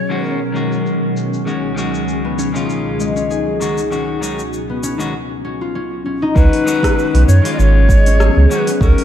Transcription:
Already playing: B2 F#3 C#4 G#4 C#5
0.09 D#3 G#3 C#4 F#4, shaker
0.24 A#4, shaker
0.52 D#3 G#3 C#4, shaker
0.56 F#4
0.72 shaker
0.86 shaker
1.17 shaker
1.34 shaker
1.45 C#2 D#3 G#3 C#4 D#4 F#4 G#4, shaker
1.75 D#3 G#3 C#4, shaker
1.79 F#4
1.94 shaker
2.08 shaker
2.25 B3
2.38 C#4, shaker
2.53 D#3 G#3 C#4 F4, shaker
2.70 shaker
3.00 G#3, shaker
3.16 C#4, shaker
3.30 G#4, shaker
3.60 D#3 G#3 C#4 F#4, shaker
3.78 shaker
3.91 D#3 G#3 C#4 F#4, shaker
4.21 D#3 G#3 C#4 F#4, shaker
4.39 shaker
4.53 shaker
4.70 B3
4.83 C#4, shaker
4.98 D#3 G#3 C#4 F#4, shaker
5.45 C#4
5.61 F4
5.75 C#4
6.06 C#4
6.22 D#4
6.35 C#2 D#3 F#3 G#3 B3 C#4 F#4 G#4 B4, kick, shaker
6.53 open hi-hat
6.64 D#3 G#3 C#4 F#4, shaker
6.83 kick, cross-stick, open hi-hat, shaker
6.99 shaker
7.14 B1 B3, open hi-hat
7.28 F#2 C#4 C#5, shaker
7.42 D#3 G#3 C#4 F4, open hi-hat, shaker
7.53 D#5
7.59 G#1 C#5, shaker
7.89 G#3, kick, shaker
8.06 C#4, open hi-hat, shaker
8.20 G#4, cross-stick, shaker
8.37 C#2
8.49 D#3 G#3 C#4 F#4 B4, shaker
8.67 open hi-hat, shaker
8.75 B4
8.80 C#2 D#3 G#3 C#4 F#4 A#4, kick, shaker
8.98 open hi-hat

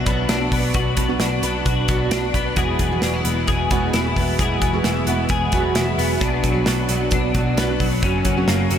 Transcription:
Already playing: B2 D4 F#4
0.06 B1 B2 F#3 B3 D4 F#4, kick, closed hi-hat
0.29 B1 D4, snare, closed hi-hat
0.40 B3 D4 F#4
0.52 B1 B3, kick, open hi-hat
0.74 B1 B2 F#3 B3 D4 F#4, kick, closed hi-hat
0.97 B1 B3, kick, closed hi-hat
1.08 B2 F#3 B3 D4 F#4
1.20 B1 D4, snare, closed hi-hat
1.42 B1 F#3 B3 D4 F#4, closed hi-hat
1.65 B1 F#4, kick, closed hi-hat
1.88 B1 B2 F#3 B3 D4 F#4, kick, closed hi-hat
2.11 B1 D4, snare, closed hi-hat
2.21 B3 D4 F#4
2.34 B1 B3, kick, closed hi-hat
2.55 E1 E3 F#3 G#3 B3 F#4 G#4, kick, closed hi-hat
2.79 E1 B3, kick, closed hi-hat
2.91 E2 B2 F#3 G#3 B3 F#4
3.02 E1 D4, snare, closed hi-hat
3.14 E4
3.25 E1 F#3 G#3 B3 F#4, closed hi-hat
3.47 E1 G#4, kick, closed hi-hat
3.70 E1 E2 B2 F#3 G#3 B3 F#4, kick, closed hi-hat
3.93 E1 E4, snare, closed hi-hat
4.05 F#3 G#3 B3 F#4
4.16 E1 B3, kick, open hi-hat
4.39 E1 E3 F#3 G#3 B3 F#4 G#4, kick, closed hi-hat
4.61 E1 B3, kick, closed hi-hat
4.73 E2 B2 F#3 G#3 B3 F#4
4.84 E1 E4, snare, closed hi-hat
5.06 E1 F#3 G#3 B3 F#4, closed hi-hat
5.29 E1 G#4, kick, closed hi-hat
5.52 E1 E2 B2 F#3 G#3 B3 F#4, kick, closed hi-hat
5.75 E1 E4, snare, closed hi-hat
5.88 F#3 G#3 B3 F#4
5.98 E1 B3, open hi-hat
6.20 B1 B2 F#3 B3 D4 F#4, kick, closed hi-hat
6.44 B1 F#3, kick, closed hi-hat
6.54 B2 F#3 B3 D4 F#4
6.66 B1 B3, snare, closed hi-hat
6.89 B1 F#3 B3 D4 F#4, closed hi-hat
7.11 B1 D4, kick, closed hi-hat
7.34 B1 B2 F#3 B3 D4 F#4, kick, closed hi-hat
7.57 B1 B3, snare, closed hi-hat
7.69 B3 D4 F#4
7.80 B1 F#3, kick, open hi-hat
8.03 F#1 F#2 F#3 A#3 C#4 F#4, kick, closed hi-hat
8.25 F#1 F#3, kick, closed hi-hat
8.37 F#2 C#3 F#3 A#3 C#4 F#4
8.48 F#1 A#3, snare, closed hi-hat
8.70 F#1 F#3 A#3 C#4 F#4, closed hi-hat

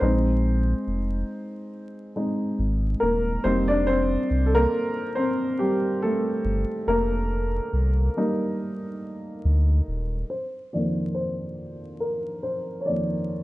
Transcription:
0.00 A#1 G#3 C4 D#4 C5
0.87 F1
2.16 G#3 C4 D#4
2.59 G#1
3.00 D#1 A#3 A#4
3.44 F1 G3 A#3 C4 D#4 C5
3.68 D4 D5
3.87 C4 C5
4.30 C2
4.46 A4
4.55 A#3 A#4
5.15 C4 C5
5.59 G3 G4
6.02 A3 A4
6.45 G1
6.88 F1 A#3 A#4
7.73 C2
8.17 G3 A#3 D#4
9.45 D2
9.88 D#1
10.30 C5
10.73 F2 D#3 A#3 D5
11.14 C5
12.00 A#4
12.43 C5
12.81 C#5
12.86 F2 D#3 A#3 D5

